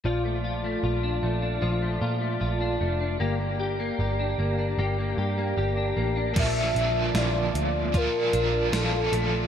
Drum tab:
CC |--------|--------|x-------|
HH |--------|--------|xxxxxxxx|
SD |--------|--------|--o---o-|
BD |--------|--------|o---o---|